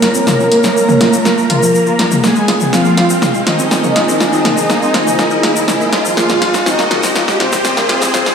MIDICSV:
0, 0, Header, 1, 8, 480
1, 0, Start_track
1, 0, Tempo, 491803
1, 264, Time_signature, 4, 2, 24, 8
1, 8147, End_track
2, 0, Start_track
2, 0, Title_t, "Supersaw synth"
2, 0, Program_c, 0, 81
2, 0, Note_on_c, 0, 82, 102
2, 2089, Note_off_c, 0, 82, 0
2, 2183, Note_on_c, 0, 80, 108
2, 2625, Note_off_c, 0, 80, 0
2, 2663, Note_on_c, 0, 77, 97
2, 3289, Note_off_c, 0, 77, 0
2, 3383, Note_on_c, 0, 75, 103
2, 5929, Note_off_c, 0, 75, 0
2, 6023, Note_on_c, 0, 77, 106
2, 6466, Note_off_c, 0, 77, 0
2, 6504, Note_on_c, 0, 75, 92
2, 7129, Note_off_c, 0, 75, 0
2, 7224, Note_on_c, 0, 72, 108
2, 8147, Note_off_c, 0, 72, 0
2, 8147, End_track
3, 0, Start_track
3, 0, Title_t, "Analog synth pad"
3, 0, Program_c, 1, 89
3, 0, Note_on_c, 1, 58, 85
3, 0, Note_on_c, 1, 70, 73
3, 0, Note_on_c, 1, 73, 80
3, 0, Note_on_c, 1, 77, 92
3, 2144, Note_off_c, 1, 58, 0
3, 2144, Note_off_c, 1, 70, 0
3, 2144, Note_off_c, 1, 77, 0
3, 2145, Note_off_c, 1, 73, 0
3, 2183, Note_on_c, 1, 68, 80
3, 2184, Note_on_c, 1, 65, 81
3, 2184, Note_on_c, 1, 72, 81
3, 2184, Note_on_c, 1, 80, 90
3, 8147, Note_off_c, 1, 65, 0
3, 8147, Note_off_c, 1, 68, 0
3, 8147, Note_off_c, 1, 72, 0
3, 8147, Note_off_c, 1, 80, 0
3, 8147, End_track
4, 0, Start_track
4, 0, Title_t, "Synth pluck"
4, 0, Program_c, 2, 84
4, 23, Note_on_c, 2, 65, 78
4, 135, Note_off_c, 2, 65, 0
4, 145, Note_on_c, 2, 60, 76
4, 218, Note_off_c, 2, 60, 0
4, 263, Note_on_c, 2, 65, 88
4, 375, Note_off_c, 2, 65, 0
4, 386, Note_on_c, 2, 61, 78
4, 458, Note_off_c, 2, 61, 0
4, 503, Note_on_c, 2, 58, 76
4, 548, Note_off_c, 2, 58, 0
4, 743, Note_on_c, 2, 58, 82
4, 856, Note_off_c, 2, 58, 0
4, 866, Note_on_c, 2, 61, 79
4, 974, Note_off_c, 2, 61, 0
4, 983, Note_on_c, 2, 65, 79
4, 1096, Note_off_c, 2, 65, 0
4, 1105, Note_on_c, 2, 58, 78
4, 1178, Note_off_c, 2, 58, 0
4, 1223, Note_on_c, 2, 65, 80
4, 1336, Note_off_c, 2, 65, 0
4, 1345, Note_on_c, 2, 70, 72
4, 1418, Note_off_c, 2, 70, 0
4, 1463, Note_on_c, 2, 65, 99
4, 1538, Note_off_c, 2, 65, 0
4, 1585, Note_on_c, 2, 53, 82
4, 1629, Note_off_c, 2, 53, 0
4, 1703, Note_on_c, 2, 53, 80
4, 1778, Note_off_c, 2, 53, 0
4, 1825, Note_on_c, 2, 65, 71
4, 1869, Note_off_c, 2, 65, 0
4, 1943, Note_on_c, 2, 53, 76
4, 2018, Note_off_c, 2, 53, 0
4, 2065, Note_on_c, 2, 58, 98
4, 2109, Note_off_c, 2, 58, 0
4, 2183, Note_on_c, 2, 58, 83
4, 2295, Note_off_c, 2, 58, 0
4, 2305, Note_on_c, 2, 56, 82
4, 2378, Note_off_c, 2, 56, 0
4, 2423, Note_on_c, 2, 65, 76
4, 2468, Note_off_c, 2, 65, 0
4, 2663, Note_on_c, 2, 60, 80
4, 2738, Note_off_c, 2, 60, 0
4, 2785, Note_on_c, 2, 58, 74
4, 2829, Note_off_c, 2, 58, 0
4, 2903, Note_on_c, 2, 65, 83
4, 3016, Note_off_c, 2, 65, 0
4, 3026, Note_on_c, 2, 60, 79
4, 3098, Note_off_c, 2, 60, 0
4, 3143, Note_on_c, 2, 65, 81
4, 3256, Note_off_c, 2, 65, 0
4, 3266, Note_on_c, 2, 56, 77
4, 3338, Note_off_c, 2, 56, 0
4, 3383, Note_on_c, 2, 65, 77
4, 3428, Note_off_c, 2, 65, 0
4, 3505, Note_on_c, 2, 60, 79
4, 3549, Note_off_c, 2, 60, 0
4, 3623, Note_on_c, 2, 60, 83
4, 3698, Note_off_c, 2, 60, 0
4, 3746, Note_on_c, 2, 58, 75
4, 3789, Note_off_c, 2, 58, 0
4, 3863, Note_on_c, 2, 65, 71
4, 3976, Note_off_c, 2, 65, 0
4, 3986, Note_on_c, 2, 60, 80
4, 4058, Note_off_c, 2, 60, 0
4, 4103, Note_on_c, 2, 65, 88
4, 4216, Note_off_c, 2, 65, 0
4, 4225, Note_on_c, 2, 60, 82
4, 4298, Note_off_c, 2, 60, 0
4, 4343, Note_on_c, 2, 58, 80
4, 4388, Note_off_c, 2, 58, 0
4, 4583, Note_on_c, 2, 58, 80
4, 4696, Note_off_c, 2, 58, 0
4, 4706, Note_on_c, 2, 60, 79
4, 4814, Note_off_c, 2, 60, 0
4, 4823, Note_on_c, 2, 65, 78
4, 4936, Note_off_c, 2, 65, 0
4, 4945, Note_on_c, 2, 58, 77
4, 5018, Note_off_c, 2, 58, 0
4, 5063, Note_on_c, 2, 65, 79
4, 5175, Note_off_c, 2, 65, 0
4, 5185, Note_on_c, 2, 70, 80
4, 5258, Note_off_c, 2, 70, 0
4, 5303, Note_on_c, 2, 58, 73
4, 5348, Note_off_c, 2, 58, 0
4, 5425, Note_on_c, 2, 70, 80
4, 5469, Note_off_c, 2, 70, 0
4, 5543, Note_on_c, 2, 56, 76
4, 5618, Note_off_c, 2, 56, 0
4, 5666, Note_on_c, 2, 58, 74
4, 5774, Note_off_c, 2, 58, 0
4, 5783, Note_on_c, 2, 65, 78
4, 5896, Note_off_c, 2, 65, 0
4, 5906, Note_on_c, 2, 53, 79
4, 5978, Note_off_c, 2, 53, 0
4, 6023, Note_on_c, 2, 58, 84
4, 6136, Note_off_c, 2, 58, 0
4, 6146, Note_on_c, 2, 56, 78
4, 6218, Note_off_c, 2, 56, 0
4, 6263, Note_on_c, 2, 65, 80
4, 6308, Note_off_c, 2, 65, 0
4, 6503, Note_on_c, 2, 60, 85
4, 6578, Note_off_c, 2, 60, 0
4, 6625, Note_on_c, 2, 58, 78
4, 6669, Note_off_c, 2, 58, 0
4, 6743, Note_on_c, 2, 65, 79
4, 6856, Note_off_c, 2, 65, 0
4, 6865, Note_on_c, 2, 60, 77
4, 6938, Note_off_c, 2, 60, 0
4, 6983, Note_on_c, 2, 65, 83
4, 7096, Note_off_c, 2, 65, 0
4, 7106, Note_on_c, 2, 56, 78
4, 7178, Note_off_c, 2, 56, 0
4, 7223, Note_on_c, 2, 65, 76
4, 7268, Note_off_c, 2, 65, 0
4, 7346, Note_on_c, 2, 60, 81
4, 7389, Note_off_c, 2, 60, 0
4, 7464, Note_on_c, 2, 60, 82
4, 7538, Note_off_c, 2, 60, 0
4, 7586, Note_on_c, 2, 58, 72
4, 7629, Note_off_c, 2, 58, 0
4, 7704, Note_on_c, 2, 65, 77
4, 7816, Note_off_c, 2, 65, 0
4, 7826, Note_on_c, 2, 60, 78
4, 7898, Note_off_c, 2, 60, 0
4, 7943, Note_on_c, 2, 65, 86
4, 8056, Note_off_c, 2, 65, 0
4, 8066, Note_on_c, 2, 60, 80
4, 8138, Note_off_c, 2, 60, 0
4, 8147, End_track
5, 0, Start_track
5, 0, Title_t, "Analog polysynth"
5, 0, Program_c, 3, 90
5, 0, Note_on_c, 3, 58, 80
5, 0, Note_on_c, 3, 70, 98
5, 2089, Note_off_c, 3, 58, 0
5, 2089, Note_off_c, 3, 70, 0
5, 2184, Note_on_c, 3, 56, 79
5, 2184, Note_on_c, 3, 68, 97
5, 2626, Note_off_c, 3, 56, 0
5, 2626, Note_off_c, 3, 68, 0
5, 2664, Note_on_c, 3, 53, 76
5, 2664, Note_on_c, 3, 65, 89
5, 3289, Note_off_c, 3, 53, 0
5, 3289, Note_off_c, 3, 65, 0
5, 3383, Note_on_c, 3, 51, 81
5, 3384, Note_on_c, 3, 63, 100
5, 5929, Note_off_c, 3, 51, 0
5, 5929, Note_off_c, 3, 63, 0
5, 6023, Note_on_c, 3, 53, 75
5, 6024, Note_on_c, 3, 65, 105
5, 6466, Note_off_c, 3, 53, 0
5, 6466, Note_off_c, 3, 65, 0
5, 6503, Note_on_c, 3, 51, 77
5, 6503, Note_on_c, 3, 63, 91
5, 7129, Note_off_c, 3, 51, 0
5, 7129, Note_off_c, 3, 63, 0
5, 7223, Note_on_c, 3, 48, 86
5, 7223, Note_on_c, 3, 60, 108
5, 8147, Note_off_c, 3, 48, 0
5, 8147, Note_off_c, 3, 60, 0
5, 8147, End_track
6, 0, Start_track
6, 0, Title_t, "Analog synth bass"
6, 0, Program_c, 4, 38
6, 23, Note_on_c, 4, 34, 97
6, 126, Note_off_c, 4, 34, 0
6, 145, Note_on_c, 4, 34, 80
6, 245, Note_off_c, 4, 34, 0
6, 503, Note_on_c, 4, 34, 99
6, 606, Note_off_c, 4, 34, 0
6, 625, Note_on_c, 4, 34, 82
6, 725, Note_off_c, 4, 34, 0
6, 983, Note_on_c, 4, 34, 90
6, 1086, Note_off_c, 4, 34, 0
6, 1105, Note_on_c, 4, 46, 79
6, 1205, Note_off_c, 4, 46, 0
6, 1463, Note_on_c, 4, 34, 92
6, 1566, Note_off_c, 4, 34, 0
6, 1585, Note_on_c, 4, 34, 78
6, 1685, Note_off_c, 4, 34, 0
6, 1943, Note_on_c, 4, 46, 90
6, 2046, Note_off_c, 4, 46, 0
6, 2066, Note_on_c, 4, 34, 88
6, 2165, Note_off_c, 4, 34, 0
6, 2423, Note_on_c, 4, 34, 95
6, 2526, Note_off_c, 4, 34, 0
6, 2545, Note_on_c, 4, 34, 81
6, 2645, Note_off_c, 4, 34, 0
6, 2903, Note_on_c, 4, 34, 95
6, 3006, Note_off_c, 4, 34, 0
6, 3025, Note_on_c, 4, 46, 79
6, 3125, Note_off_c, 4, 46, 0
6, 3383, Note_on_c, 4, 34, 97
6, 3486, Note_off_c, 4, 34, 0
6, 3505, Note_on_c, 4, 34, 80
6, 3605, Note_off_c, 4, 34, 0
6, 3863, Note_on_c, 4, 34, 97
6, 3966, Note_off_c, 4, 34, 0
6, 3986, Note_on_c, 4, 34, 85
6, 4085, Note_off_c, 4, 34, 0
6, 4344, Note_on_c, 4, 34, 94
6, 4447, Note_off_c, 4, 34, 0
6, 4466, Note_on_c, 4, 34, 86
6, 4565, Note_off_c, 4, 34, 0
6, 4824, Note_on_c, 4, 34, 95
6, 4927, Note_off_c, 4, 34, 0
6, 4946, Note_on_c, 4, 46, 80
6, 5045, Note_off_c, 4, 46, 0
6, 5303, Note_on_c, 4, 34, 93
6, 5407, Note_off_c, 4, 34, 0
6, 5426, Note_on_c, 4, 34, 83
6, 5525, Note_off_c, 4, 34, 0
6, 5783, Note_on_c, 4, 34, 99
6, 5887, Note_off_c, 4, 34, 0
6, 5906, Note_on_c, 4, 34, 82
6, 6005, Note_off_c, 4, 34, 0
6, 6263, Note_on_c, 4, 34, 100
6, 6367, Note_off_c, 4, 34, 0
6, 6386, Note_on_c, 4, 34, 82
6, 6485, Note_off_c, 4, 34, 0
6, 6744, Note_on_c, 4, 34, 90
6, 6847, Note_off_c, 4, 34, 0
6, 6866, Note_on_c, 4, 46, 79
6, 6965, Note_off_c, 4, 46, 0
6, 7223, Note_on_c, 4, 34, 94
6, 7326, Note_off_c, 4, 34, 0
6, 7346, Note_on_c, 4, 34, 79
6, 7445, Note_off_c, 4, 34, 0
6, 7703, Note_on_c, 4, 34, 101
6, 7806, Note_off_c, 4, 34, 0
6, 7825, Note_on_c, 4, 34, 81
6, 7925, Note_off_c, 4, 34, 0
6, 8147, End_track
7, 0, Start_track
7, 0, Title_t, "Riser"
7, 0, Program_c, 5, 103
7, 0, Note_on_c, 5, 60, 77
7, 8147, Note_off_c, 5, 60, 0
7, 8147, End_track
8, 0, Start_track
8, 0, Title_t, "Drums"
8, 23, Note_on_c, 9, 38, 68
8, 23, Note_on_c, 9, 46, 99
8, 121, Note_off_c, 9, 38, 0
8, 121, Note_off_c, 9, 46, 0
8, 141, Note_on_c, 9, 82, 78
8, 239, Note_off_c, 9, 82, 0
8, 263, Note_on_c, 9, 38, 66
8, 263, Note_on_c, 9, 47, 86
8, 266, Note_on_c, 9, 82, 65
8, 361, Note_off_c, 9, 38, 0
8, 361, Note_off_c, 9, 47, 0
8, 364, Note_off_c, 9, 82, 0
8, 390, Note_on_c, 9, 82, 39
8, 488, Note_off_c, 9, 82, 0
8, 503, Note_on_c, 9, 46, 105
8, 601, Note_off_c, 9, 46, 0
8, 617, Note_on_c, 9, 82, 70
8, 626, Note_on_c, 9, 38, 57
8, 715, Note_off_c, 9, 82, 0
8, 723, Note_off_c, 9, 38, 0
8, 752, Note_on_c, 9, 82, 68
8, 849, Note_off_c, 9, 82, 0
8, 866, Note_on_c, 9, 47, 85
8, 868, Note_on_c, 9, 82, 40
8, 963, Note_off_c, 9, 47, 0
8, 966, Note_off_c, 9, 82, 0
8, 983, Note_on_c, 9, 38, 72
8, 983, Note_on_c, 9, 46, 96
8, 1081, Note_off_c, 9, 38, 0
8, 1081, Note_off_c, 9, 46, 0
8, 1103, Note_on_c, 9, 82, 83
8, 1201, Note_off_c, 9, 82, 0
8, 1223, Note_on_c, 9, 38, 68
8, 1225, Note_on_c, 9, 82, 57
8, 1321, Note_off_c, 9, 38, 0
8, 1322, Note_off_c, 9, 82, 0
8, 1349, Note_on_c, 9, 82, 37
8, 1447, Note_off_c, 9, 82, 0
8, 1463, Note_on_c, 9, 46, 117
8, 1463, Note_on_c, 9, 47, 89
8, 1560, Note_off_c, 9, 46, 0
8, 1560, Note_off_c, 9, 47, 0
8, 1589, Note_on_c, 9, 82, 80
8, 1686, Note_off_c, 9, 82, 0
8, 1703, Note_on_c, 9, 82, 68
8, 1801, Note_off_c, 9, 82, 0
8, 1819, Note_on_c, 9, 82, 39
8, 1917, Note_off_c, 9, 82, 0
8, 1943, Note_on_c, 9, 38, 73
8, 1943, Note_on_c, 9, 46, 92
8, 2041, Note_off_c, 9, 38, 0
8, 2041, Note_off_c, 9, 46, 0
8, 2062, Note_on_c, 9, 82, 80
8, 2066, Note_on_c, 9, 47, 90
8, 2160, Note_off_c, 9, 82, 0
8, 2163, Note_off_c, 9, 47, 0
8, 2182, Note_on_c, 9, 82, 61
8, 2183, Note_on_c, 9, 38, 75
8, 2280, Note_off_c, 9, 82, 0
8, 2281, Note_off_c, 9, 38, 0
8, 2299, Note_on_c, 9, 82, 39
8, 2397, Note_off_c, 9, 82, 0
8, 2423, Note_on_c, 9, 38, 78
8, 2423, Note_on_c, 9, 46, 109
8, 2520, Note_off_c, 9, 38, 0
8, 2520, Note_off_c, 9, 46, 0
8, 2540, Note_on_c, 9, 82, 74
8, 2546, Note_on_c, 9, 47, 86
8, 2638, Note_off_c, 9, 82, 0
8, 2643, Note_off_c, 9, 47, 0
8, 2664, Note_on_c, 9, 38, 78
8, 2668, Note_on_c, 9, 82, 64
8, 2761, Note_off_c, 9, 38, 0
8, 2765, Note_off_c, 9, 82, 0
8, 2783, Note_on_c, 9, 82, 35
8, 2880, Note_off_c, 9, 82, 0
8, 2903, Note_on_c, 9, 38, 76
8, 2903, Note_on_c, 9, 46, 95
8, 3001, Note_off_c, 9, 38, 0
8, 3001, Note_off_c, 9, 46, 0
8, 3022, Note_on_c, 9, 82, 81
8, 3120, Note_off_c, 9, 82, 0
8, 3143, Note_on_c, 9, 38, 75
8, 3143, Note_on_c, 9, 47, 86
8, 3146, Note_on_c, 9, 82, 63
8, 3241, Note_off_c, 9, 38, 0
8, 3241, Note_off_c, 9, 47, 0
8, 3243, Note_off_c, 9, 82, 0
8, 3263, Note_on_c, 9, 82, 36
8, 3361, Note_off_c, 9, 82, 0
8, 3383, Note_on_c, 9, 38, 82
8, 3383, Note_on_c, 9, 46, 104
8, 3481, Note_off_c, 9, 38, 0
8, 3481, Note_off_c, 9, 46, 0
8, 3505, Note_on_c, 9, 82, 77
8, 3603, Note_off_c, 9, 82, 0
8, 3623, Note_on_c, 9, 38, 83
8, 3623, Note_on_c, 9, 82, 58
8, 3721, Note_off_c, 9, 38, 0
8, 3721, Note_off_c, 9, 82, 0
8, 3744, Note_on_c, 9, 82, 42
8, 3745, Note_on_c, 9, 47, 86
8, 3841, Note_off_c, 9, 82, 0
8, 3843, Note_off_c, 9, 47, 0
8, 3863, Note_on_c, 9, 38, 80
8, 3863, Note_on_c, 9, 46, 94
8, 3961, Note_off_c, 9, 38, 0
8, 3961, Note_off_c, 9, 46, 0
8, 3990, Note_on_c, 9, 82, 83
8, 4087, Note_off_c, 9, 82, 0
8, 4103, Note_on_c, 9, 38, 83
8, 4105, Note_on_c, 9, 82, 56
8, 4201, Note_off_c, 9, 38, 0
8, 4203, Note_off_c, 9, 82, 0
8, 4224, Note_on_c, 9, 82, 42
8, 4322, Note_off_c, 9, 82, 0
8, 4343, Note_on_c, 9, 38, 87
8, 4343, Note_on_c, 9, 46, 107
8, 4343, Note_on_c, 9, 47, 92
8, 4441, Note_off_c, 9, 38, 0
8, 4441, Note_off_c, 9, 46, 0
8, 4441, Note_off_c, 9, 47, 0
8, 4462, Note_on_c, 9, 82, 75
8, 4560, Note_off_c, 9, 82, 0
8, 4582, Note_on_c, 9, 82, 63
8, 4583, Note_on_c, 9, 38, 85
8, 4679, Note_off_c, 9, 82, 0
8, 4681, Note_off_c, 9, 38, 0
8, 4708, Note_on_c, 9, 82, 35
8, 4805, Note_off_c, 9, 82, 0
8, 4823, Note_on_c, 9, 38, 90
8, 4823, Note_on_c, 9, 46, 89
8, 4921, Note_off_c, 9, 38, 0
8, 4921, Note_off_c, 9, 46, 0
8, 4946, Note_on_c, 9, 47, 87
8, 4951, Note_on_c, 9, 82, 85
8, 5043, Note_off_c, 9, 47, 0
8, 5048, Note_off_c, 9, 82, 0
8, 5061, Note_on_c, 9, 82, 58
8, 5063, Note_on_c, 9, 38, 86
8, 5159, Note_off_c, 9, 82, 0
8, 5161, Note_off_c, 9, 38, 0
8, 5176, Note_on_c, 9, 82, 38
8, 5274, Note_off_c, 9, 82, 0
8, 5303, Note_on_c, 9, 38, 89
8, 5303, Note_on_c, 9, 46, 105
8, 5401, Note_off_c, 9, 38, 0
8, 5401, Note_off_c, 9, 46, 0
8, 5428, Note_on_c, 9, 82, 89
8, 5525, Note_off_c, 9, 82, 0
8, 5543, Note_on_c, 9, 38, 87
8, 5543, Note_on_c, 9, 47, 94
8, 5550, Note_on_c, 9, 82, 72
8, 5641, Note_off_c, 9, 38, 0
8, 5641, Note_off_c, 9, 47, 0
8, 5647, Note_off_c, 9, 82, 0
8, 5671, Note_on_c, 9, 82, 41
8, 5768, Note_off_c, 9, 82, 0
8, 5783, Note_on_c, 9, 38, 98
8, 5783, Note_on_c, 9, 46, 88
8, 5881, Note_off_c, 9, 38, 0
8, 5881, Note_off_c, 9, 46, 0
8, 5906, Note_on_c, 9, 82, 75
8, 6004, Note_off_c, 9, 82, 0
8, 6023, Note_on_c, 9, 38, 97
8, 6031, Note_on_c, 9, 82, 63
8, 6121, Note_off_c, 9, 38, 0
8, 6129, Note_off_c, 9, 82, 0
8, 6139, Note_on_c, 9, 82, 43
8, 6145, Note_on_c, 9, 38, 82
8, 6145, Note_on_c, 9, 47, 96
8, 6237, Note_off_c, 9, 82, 0
8, 6243, Note_off_c, 9, 38, 0
8, 6243, Note_off_c, 9, 47, 0
8, 6263, Note_on_c, 9, 38, 96
8, 6263, Note_on_c, 9, 46, 104
8, 6361, Note_off_c, 9, 38, 0
8, 6361, Note_off_c, 9, 46, 0
8, 6382, Note_on_c, 9, 82, 77
8, 6386, Note_on_c, 9, 38, 86
8, 6480, Note_off_c, 9, 82, 0
8, 6483, Note_off_c, 9, 38, 0
8, 6503, Note_on_c, 9, 38, 96
8, 6507, Note_on_c, 9, 82, 61
8, 6601, Note_off_c, 9, 38, 0
8, 6604, Note_off_c, 9, 82, 0
8, 6626, Note_on_c, 9, 38, 83
8, 6627, Note_on_c, 9, 82, 34
8, 6723, Note_off_c, 9, 38, 0
8, 6724, Note_off_c, 9, 82, 0
8, 6743, Note_on_c, 9, 38, 97
8, 6743, Note_on_c, 9, 46, 85
8, 6743, Note_on_c, 9, 47, 91
8, 6841, Note_off_c, 9, 38, 0
8, 6841, Note_off_c, 9, 46, 0
8, 6841, Note_off_c, 9, 47, 0
8, 6863, Note_on_c, 9, 82, 75
8, 6866, Note_on_c, 9, 38, 85
8, 6960, Note_off_c, 9, 82, 0
8, 6963, Note_off_c, 9, 38, 0
8, 6981, Note_on_c, 9, 82, 59
8, 6983, Note_on_c, 9, 38, 97
8, 7078, Note_off_c, 9, 82, 0
8, 7081, Note_off_c, 9, 38, 0
8, 7106, Note_on_c, 9, 38, 92
8, 7113, Note_on_c, 9, 82, 40
8, 7203, Note_off_c, 9, 38, 0
8, 7210, Note_off_c, 9, 82, 0
8, 7223, Note_on_c, 9, 38, 95
8, 7223, Note_on_c, 9, 46, 104
8, 7321, Note_off_c, 9, 38, 0
8, 7321, Note_off_c, 9, 46, 0
8, 7342, Note_on_c, 9, 82, 86
8, 7346, Note_on_c, 9, 38, 91
8, 7346, Note_on_c, 9, 47, 100
8, 7440, Note_off_c, 9, 82, 0
8, 7444, Note_off_c, 9, 38, 0
8, 7444, Note_off_c, 9, 47, 0
8, 7462, Note_on_c, 9, 82, 63
8, 7463, Note_on_c, 9, 38, 100
8, 7560, Note_off_c, 9, 82, 0
8, 7561, Note_off_c, 9, 38, 0
8, 7583, Note_on_c, 9, 82, 38
8, 7586, Note_on_c, 9, 38, 88
8, 7681, Note_off_c, 9, 82, 0
8, 7683, Note_off_c, 9, 38, 0
8, 7703, Note_on_c, 9, 38, 104
8, 7703, Note_on_c, 9, 46, 86
8, 7801, Note_off_c, 9, 38, 0
8, 7801, Note_off_c, 9, 46, 0
8, 7826, Note_on_c, 9, 38, 93
8, 7826, Note_on_c, 9, 82, 69
8, 7923, Note_off_c, 9, 38, 0
8, 7924, Note_off_c, 9, 82, 0
8, 7943, Note_on_c, 9, 38, 105
8, 7943, Note_on_c, 9, 47, 100
8, 7945, Note_on_c, 9, 82, 58
8, 8041, Note_off_c, 9, 38, 0
8, 8041, Note_off_c, 9, 47, 0
8, 8043, Note_off_c, 9, 82, 0
8, 8065, Note_on_c, 9, 38, 91
8, 8067, Note_on_c, 9, 82, 41
8, 8147, Note_off_c, 9, 38, 0
8, 8147, Note_off_c, 9, 82, 0
8, 8147, End_track
0, 0, End_of_file